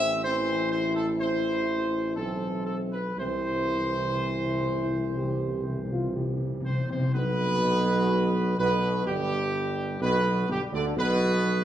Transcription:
Already playing: tuba A1, trombone section E3 C4, french horn section C4, trumpet section E5
0.23 trombone section E3 C4, french horn section E4, trumpet section C5
0.72 trumpet section C5
0.96 trumpet section A4
1.20 trombone section E3 C4, trumpet section C5
2.16 tuba B1, trombone section E3 C4, french horn section C4, trumpet section A4
2.66 trumpet section A4
2.93 trumpet section B4
3.17 tuba C2, timpani C3, trombone section E3 C4, french horn section E4, trumpet section C5
3.26 timpani C3
3.42 timpani C3
3.50 timpani C3
3.66 timpani C3
3.73 timpani C3
3.81 timpani C3
3.89 timpani C3
3.96 timpani C3
4.05 timpani C3
4.12 timpani C3
4.18 timpani C3, french horn section E4
4.37 timpani C3
4.45 timpani C3
4.53 timpani C3
4.61 timpani C3
4.69 timpani C3
4.78 timpani C3
4.86 timpani C3
4.92 timpani C3
5.00 timpani C3
5.08 timpani C3
5.14 timpani C3, french horn section G4
5.23 timpani C3
5.31 timpani C3
5.39 timpani C3
5.46 timpani C3
5.54 timpani C3
5.61 timpani C3
5.68 timpani C3, french horn section E4
5.77 timpani C3
5.85 timpani C3
5.91 timpani C3, french horn section F4
6.00 timpani C3
6.09 timpani C3
6.16 timpani C3, french horn section G4
6.24 timpani C3
6.31 timpani C3
6.38 timpani C3
6.45 timpani C3
6.53 timpani C3
6.60 timpani C3
6.65 french horn section C4, trumpet section C5
6.70 timpani C3
6.78 timpani C3
6.85 timpani C3
6.89 timpani C3, french horn section C4, trumpet section C5
6.99 timpani C3
7.13 tuba B1, trombone section B2, french horn section B3, trumpet section B4
8.58 tuba B1, trombone section B2, french horn section B3, trumpet section B4
9.06 tuba G1, trombone section G2, french horn section G3, trumpet section G4
10.01 tuba B1, trombone section B2, french horn section B3, trumpet section B4
10.49 tuba G1, trombone section G2, french horn section G3, trumpet section G4
10.72 tuba D2, trombone section D3, french horn section D4, trumpet section D5
10.96 tuba B1, trombone section B2, french horn section B3, trumpet section B4

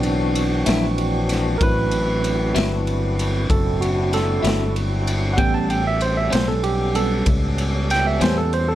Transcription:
Already playing: fingered electric bass B1, tonewheel organ E3 C4 D4 F#4, tine electric piano F#3 D4
0.03 ride
0.35 ride
0.66 fingered electric bass A#1, clean electric guitar D3 F#3 C4 E4, snare, ride
0.98 ride
1.29 snare, ride
1.58 fingered electric bass A1, tine electric piano F#3 A#4, tonewheel organ C4 D4 E4 F#4, kick, ride
1.62 tine electric piano C4 E4 B4
1.91 ride
2.24 ride
2.55 fingered electric bass G1, clean electric guitar D3 F#3 C4 E4, snare, ride
2.87 ride
3.19 ride
3.50 fingered electric bass F#1, tine electric piano A4, kick, ride
3.81 tine electric piano F#4, ride
4.13 tine electric piano A4, snare, ride
4.43 fingered electric bass G1, clean electric guitar D3 F#3 C4 E4, ride
4.47 snare
4.76 ride
5.07 ride
5.34 clean electric guitar A2 G3, tonewheel organ G3 B3 C#4 A4, tine electric piano G3 B3 F#5
5.38 fingered electric bass A1, clean electric guitar B3 C#4, tine electric piano C#4 G5, kick, ride
5.54 tine electric piano A5
5.70 tine electric piano G5, ride
5.87 tine electric piano E5
6.00 tine electric piano C5, ride
6.17 tine electric piano E5
6.30 fingered electric bass B1, clean electric guitar A2 G3 B3 C#4, tine electric piano C5, ride
6.35 snare
6.48 tine electric piano A4
6.63 tine electric piano G4, ride
6.94 tine electric piano G3 B3 C#4 A4, ride
7.26 fingered electric bass C#2, kick, ride
7.58 ride
7.90 tine electric piano G5, snare, ride
8.07 tine electric piano E5
8.20 fingered electric bass E2, clean electric guitar A2 G3 B3 C#4, tine electric piano C5, snare, ride
8.38 tine electric piano A4
8.53 tine electric piano C5, ride
8.68 tine electric piano A4

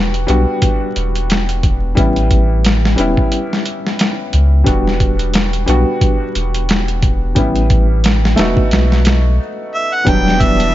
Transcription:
Already playing: sub bass E1, felt piano G3 B3 D4 F#4
0.14 closed hi-hat
0.27 sub bass B1, felt piano G3 B3 D4 F#4, closed hi-hat
0.62 kick, closed hi-hat
0.96 sub bass E1, closed hi-hat
1.15 closed hi-hat
1.30 snare, closed hi-hat
1.49 closed hi-hat
1.63 kick, closed hi-hat
1.95 sub bass A1, felt piano G3 B3 C#4 E4, kick, closed hi-hat
2.16 closed hi-hat
2.31 kick, closed hi-hat
2.65 snare, closed hi-hat
2.85 snare
2.96 sub bass E1, felt piano G3 B3 C#4 E4, closed hi-hat
3.17 kick
3.32 closed hi-hat
3.53 snare
3.66 closed hi-hat
3.87 snare
3.99 snare, closed hi-hat
4.33 sub bass C#2, closed hi-hat
4.64 sub bass E1, felt piano G3 B3 D4 F#4, kick, closed hi-hat
4.87 snare
5.00 kick, closed hi-hat
5.19 closed hi-hat
5.34 snare, closed hi-hat
5.53 closed hi-hat
5.66 sub bass B1, felt piano G3 B3 D4 F#4, closed hi-hat
6.01 kick, closed hi-hat
6.35 sub bass E1, closed hi-hat
6.54 closed hi-hat
6.69 snare, closed hi-hat
6.88 closed hi-hat
7.02 kick, closed hi-hat
7.35 sub bass A1, felt piano G3 B3 C#4 E4, kick, closed hi-hat
7.56 closed hi-hat
7.70 kick, closed hi-hat
8.04 snare, closed hi-hat
8.25 snare
8.36 sub bass E1, felt piano A3 B3 D#4 F#4, snare, closed hi-hat
8.57 kick
8.71 sub bass B1, snare, closed hi-hat
8.92 snare
9.05 snare, closed hi-hat
9.74 harmonica E5
9.94 harmonica F#5
10.05 sub bass E1, string section E3 B3 D4, felt piano F#3 G3 B3 D4, harmonica G5, kick, closed hi-hat
10.28 snare
10.40 harmonica E5, kick, closed hi-hat
10.60 closed hi-hat

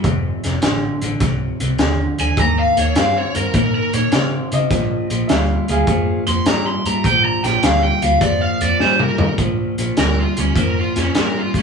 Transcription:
0.04 fingered electric bass F1, clean electric guitar F2 C3, kick, closed hi-hat
0.44 fingered electric bass F1, clean electric guitar F2 C3, snare, closed hi-hat
0.62 fingered electric bass A1, clean electric guitar F2 D3, snare, closed hi-hat
1.02 fingered electric bass A1, clean electric guitar F2 D3, closed hi-hat
1.20 fingered electric bass C2, clean electric guitar F2 C3, kick, snare, closed hi-hat
1.60 fingered electric bass C2, clean electric guitar F2 C3, closed hi-hat
1.78 fingered electric bass D#2, clean electric guitar F2 D3, snare, closed hi-hat
2.18 fingered electric bass D#2, clean electric guitar F2 D3, lead electric guitar G#5, closed hi-hat
2.37 fingered electric bass D#2, clean electric guitar D#3 A#3, lead electric guitar A#5, kick, closed hi-hat
2.59 lead electric guitar F5
2.77 fingered electric bass D#2, clean electric guitar D#3 A#3, lead electric guitar C#5, closed hi-hat
2.95 fingered electric bass G2, clean electric guitar D#3 C4, lead electric guitar F5, snare, closed hi-hat
3.17 lead electric guitar C#5
3.35 fingered electric bass G2, clean electric guitar D#3 C4, lead electric guitar A#4, closed hi-hat
3.54 fingered electric bass A#2, clean electric guitar D#3 A#3, lead electric guitar A#4, kick, closed hi-hat
3.75 lead electric guitar A#4
3.93 fingered electric bass A#2, clean electric guitar D#3 A#3, lead electric guitar C#5, closed hi-hat
4.12 fingered electric bass C#3, clean electric guitar D#3 C4, snare, closed hi-hat
4.52 fingered electric bass C#3, clean electric guitar D#3 C4, upright piano D#5, closed hi-hat
4.71 fingered electric bass A#1, clean electric guitar A#2 F3, kick, snare, closed hi-hat
5.10 fingered electric bass A#1, clean electric guitar A#2 F3, closed hi-hat
5.28 fingered electric bass D2, clean electric guitar A#2 G3, upright piano E5, snare, closed hi-hat
5.32 upright piano F5
5.68 fingered electric bass D2, clean electric guitar A#2 G3, upright piano G#4 F5, closed hi-hat
5.87 fingered electric bass F2, clean electric guitar A#2 F3, kick, closed hi-hat
6.27 fingered electric bass F2, clean electric guitar A#2 F3, lead electric guitar C6, closed hi-hat
6.46 fingered electric bass G#2, clean electric guitar A#2 G3, lead electric guitar A#5, snare, closed hi-hat
6.67 lead electric guitar C6
6.85 fingered electric bass G#2, clean electric guitar A#2 G3, lead electric guitar A#5, closed hi-hat
7.04 fingered electric bass A#1, clean electric guitar A#2 F3, lead electric guitar G5, kick, closed hi-hat
7.25 lead electric guitar A#5
7.44 fingered electric bass A#1, clean electric guitar A#2 F3, lead electric guitar G5, snare, closed hi-hat
7.63 fingered electric bass D2, clean electric guitar A#2 G3, lead electric guitar F5, snare, closed hi-hat
7.83 lead electric guitar G5
8.02 fingered electric bass D2, clean electric guitar A#2 G3, lead electric guitar F5, closed hi-hat
8.21 fingered electric bass F2, clean electric guitar A#2 F3, lead electric guitar D5, kick, closed hi-hat
8.41 lead electric guitar F5
8.61 fingered electric bass F2, clean electric guitar A#2 F3, lead electric guitar D5, closed hi-hat
8.80 fingered electric bass G#2, clean electric guitar A#2 G3, lead electric guitar C5, snare
8.99 lead electric guitar A#4, mid tom
9.18 fingered electric bass G#2, clean electric guitar A#2 G3, floor tom
9.38 fingered electric bass A#1, clean electric guitar A#2 F3, kick, closed hi-hat
9.78 fingered electric bass A#1, clean electric guitar A#2 F3, closed hi-hat
9.97 fingered electric bass D2, clean electric guitar A#2 G3, lead electric guitar A#4, snare, closed hi-hat
10.20 lead electric guitar F4
10.37 fingered electric bass D2, clean electric guitar A#2 G3, lead electric guitar C#4, closed hi-hat
10.55 fingered electric bass F2, clean electric guitar A#2 F3, kick, closed hi-hat
10.60 lead electric guitar A#4
10.80 lead electric guitar F4
10.96 fingered electric bass F2, clean electric guitar A#2 F3, lead electric guitar C#4, snare, closed hi-hat
11.15 fingered electric bass G#2, clean electric guitar A#2 G3, lead electric guitar A#4, snare, closed hi-hat
11.38 lead electric guitar F4
11.54 fingered electric bass F2, clean electric guitar A#2 G3, lead electric guitar C#4, kick, closed hi-hat

